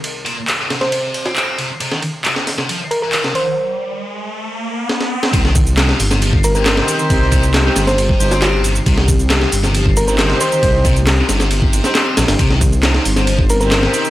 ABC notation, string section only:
X:1
M:4/4
L:1/16
Q:1/4=136
K:Cm
V:1 name="String section"
z16 | z16 | z16 | z8 z3 [CEGc]4- [CEGc]- |
[CEGc]4- [CEGc] [CEGc] z4 [CEGc] z4 z | z8 z3 [CEGc]4- [CEGc]- | [CEGc]4- [CEGc] z6 [CEGc] z4 | z8 z3 [CEGc]4- [CEGc] |]